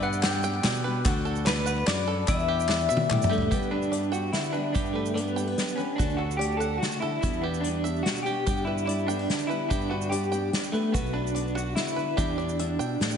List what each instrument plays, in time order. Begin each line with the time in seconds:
Already playing: steel-string acoustic guitar G2 D3 G3 B3 D4 G4, fingered electric bass G2, five-string banjo G4 D5
0.02 five-string banjo B4, clean electric guitar F#5, glockenspiel F#6, shaker
0.13 shaker
0.22 steel-string acoustic guitar G3 B3 D4 G4, five-string banjo D5, clean electric guitar G5, glockenspiel G6, snare, clap, closed hi-hat
0.34 shaker
0.43 steel-string acoustic guitar G3 B3 D4 G4, five-string banjo G5, shaker
0.54 clap
0.64 fingered electric bass B2, steel-string acoustic guitar G3 B3 D4 G4, five-string banjo D5, snare, clap, closed hi-hat
0.75 shaker
0.84 steel-string acoustic guitar G3 B3 D4 G4, five-string banjo B4
1.05 fingered electric bass D2, steel-string acoustic guitar D3 A3 D4 F#4 A4, five-string banjo F#4, kick, clap, closed hi-hat, shaker
1.25 five-string banjo A4, shaker
1.36 shaker
1.45 steel-string acoustic guitar A3 D4 F#4 A4, clean electric guitar B4, five-string banjo D5, glockenspiel B5, snare, clap, closed hi-hat
1.57 shaker
1.66 clean electric guitar B4, five-string banjo F#5, glockenspiel B5, shaker
1.77 clap
1.86 fingered electric bass F#2, steel-string acoustic guitar A3 D4 F#4 A4, five-string banjo D5, clean electric guitar D5, glockenspiel D6, snare, clap, closed hi-hat
2.07 steel-string acoustic guitar D4 F#4 A4, five-string banjo A4
2.27 fingered electric bass E2, steel-string acoustic guitar E3 G3 B3 D4 G4, five-string banjo E4, clean electric guitar E5, glockenspiel E6, kick, clap, closed hi-hat, shaker
2.39 shaker
2.48 five-string banjo G4
2.60 shaker
2.68 steel-string acoustic guitar G3 B3 D4 G4, five-string banjo D5, snare, clap
2.80 shaker
2.89 fingered electric bass B2, five-string banjo E5, shaker
2.97 high tom
3.09 fingered electric bass A2, steel-string acoustic guitar G3 B3 D4 G4, five-string banjo D5, clap, mid tom, shaker
3.22 mid tom, shaker
3.29 fingered electric bass G2, clean electric guitar A3, five-string banjo G4, shaker
3.38 clap, floor tom
3.51 steel-string acoustic guitar G2 D3 G3 B3 D4 G4 B4, fingered electric bass G2, clean electric guitar B3, five-string banjo G4, kick, closed hi-hat, shaker
3.62 shaker
3.71 clean electric guitar D4, steel-string acoustic guitar G4, five-string banjo B4
3.82 shaker
3.92 steel-string acoustic guitar G3 B3 D4 G4, five-string banjo D5, closed hi-hat
4.03 shaker
4.12 steel-string acoustic guitar G3 B3 D4 G4, clean electric guitar F#4, five-string banjo G5, shaker
4.33 steel-string acoustic guitar D3 G3 B3 D4 G4, clean electric guitar E4, snare, closed hi-hat
4.44 shaker
4.52 steel-string acoustic guitar B3 D4 G4 B4, clean electric guitar D4, five-string banjo B4, shaker
4.57 steel-string acoustic guitar G3
4.72 steel-string acoustic guitar G2 D3 G3 B3 D4 G4, fingered electric bass G2, clean electric guitar D4, five-string banjo G4, kick, closed hi-hat, shaker
4.85 shaker
4.93 clean electric guitar A3, five-string banjo B4
4.97 steel-string acoustic guitar G4
5.06 shaker
5.14 steel-string acoustic guitar G3 B3 D4 G4, clean electric guitar B3, five-string banjo D5, closed hi-hat
5.27 shaker
5.36 steel-string acoustic guitar G3 B3 D4 G4 A4, five-string banjo G5, shaker
5.48 steel-string acoustic guitar B4
5.58 steel-string acoustic guitar F#3 G3 B3 D4 G4, snare, closed hi-hat
5.68 shaker
5.76 steel-string acoustic guitar E3 G3 B3 D4 G4, clean electric guitar C#4, five-string banjo B4, shaker
5.96 fingered electric bass D2, steel-string acoustic guitar D3, clean electric guitar D4, five-string banjo F#4, kick, closed hi-hat
6.00 steel-string acoustic guitar A3 D4 F#4 A4, shaker
6.10 shaker
6.17 steel-string acoustic guitar D4, clean electric guitar F#4, five-string banjo A4
6.31 shaker
6.37 steel-string acoustic guitar A3 D4, clean electric guitar G4, five-string banjo D5
6.41 steel-string acoustic guitar F#4 A4, closed hi-hat
6.52 shaker
6.57 clean electric guitar A4, steel-string acoustic guitar A4, five-string banjo F#5, shaker
6.62 steel-string acoustic guitar D4 F#4
6.78 steel-string acoustic guitar C#3 A3 D4, clean electric guitar F#4
6.82 steel-string acoustic guitar F#4 A4, snare, closed hi-hat
6.92 shaker
7.00 steel-string acoustic guitar D3 D4 F#4 A4, clean electric guitar E4, five-string banjo A4, shaker
7.21 fingered electric bass E2, steel-string acoustic guitar E3 G3 B3 D4 G4, clean electric guitar E4, five-string banjo E4, kick, closed hi-hat, shaker
7.33 shaker
7.42 clean electric guitar B3, steel-string acoustic guitar D4, five-string banjo G4
7.54 shaker
7.61 steel-string acoustic guitar G3, clean electric guitar D4, five-string banjo D5, closed hi-hat
7.65 steel-string acoustic guitar B3 D4 G4
7.84 steel-string acoustic guitar B3 D4 G4, five-string banjo E5, shaker
7.96 shaker
8.03 steel-string acoustic guitar B2 G3 B3 D4, clean electric guitar F#4, snare, closed hi-hat
8.07 steel-string acoustic guitar G4
8.16 shaker
8.23 clean electric guitar G4, five-string banjo G4, shaker
8.27 steel-string acoustic guitar B3 D4 G4
8.46 steel-string acoustic guitar G2 D3 G3 B3 D4 G4, fingered electric bass G2, five-string banjo G4, kick, closed hi-hat, shaker
8.57 shaker
8.65 steel-string acoustic guitar D4, clean electric guitar E4, five-string banjo B4
8.78 shaker
8.86 steel-string acoustic guitar G3 B3 D4 G4, clean electric guitar E4, five-string banjo D5, closed hi-hat
8.99 shaker
9.07 steel-string acoustic guitar B3 D4 G4 A4, clean electric guitar D4, five-string banjo G5, shaker
9.11 steel-string acoustic guitar G3
9.19 steel-string acoustic guitar B4
9.29 steel-string acoustic guitar D3 G3 B3 D4 G4, snare, closed hi-hat
9.40 shaker
9.47 steel-string acoustic guitar D4 G4, clean electric guitar E4, five-string banjo B4, shaker
9.52 steel-string acoustic guitar G3 B3
9.69 steel-string acoustic guitar G2 D3 G3 B3 D4 G4, fingered electric bass G2, clean electric guitar D4, five-string banjo G4, kick, closed hi-hat, shaker
9.81 shaker
9.90 steel-string acoustic guitar D4, clean electric guitar F#4, five-string banjo B4
10.02 shaker
10.10 steel-string acoustic guitar G3 B3 D4, clean electric guitar G4, five-string banjo D5, closed hi-hat
10.14 steel-string acoustic guitar G4
10.23 shaker
10.32 steel-string acoustic guitar G3 B3 D4 G4, five-string banjo G5, shaker
10.53 steel-string acoustic guitar G3 B3 D4 G4, snare, closed hi-hat
10.64 shaker
10.72 clean electric guitar A3, steel-string acoustic guitar A3 B3 D4 G4, five-string banjo B4, shaker
10.77 steel-string acoustic guitar G3
10.92 fingered electric bass B1, steel-string acoustic guitar B2 F#3 B3 D4 B4, clean electric guitar B3, five-string banjo F#4, kick, closed hi-hat, shaker
10.97 steel-string acoustic guitar F#4
11.06 shaker
11.13 clean electric guitar D4, steel-string acoustic guitar D4, five-string banjo B4
11.27 shaker
11.35 steel-string acoustic guitar B3 D4 F#4 B4, five-string banjo D5, closed hi-hat
11.47 shaker
11.55 steel-string acoustic guitar B3 D4 F#4 B4, clean electric guitar F#4, five-string banjo F#5, shaker
11.75 steel-string acoustic guitar C#3 B3 D4 F#4 B4, clean electric guitar E4, snare, closed hi-hat
11.88 shaker
11.96 steel-string acoustic guitar D3, five-string banjo B4, shaker
12.17 fingered electric bass E2, steel-string acoustic guitar E3 G3 B3 D4 E4 G4 B4, clean electric guitar D4, five-string banjo G4, kick, closed hi-hat, shaker
12.38 steel-string acoustic guitar D4, five-string banjo D5, shaker
12.49 shaker
12.59 steel-string acoustic guitar G3 B3 D4 E4 G4, five-string banjo E5, closed hi-hat
12.79 fingered electric bass B2, steel-string acoustic guitar G4, five-string banjo G5, shaker
13.00 fingered electric bass A2, steel-string acoustic guitar E3 B3 D4 E4 G4, snare, closed hi-hat, shaker
13.11 shaker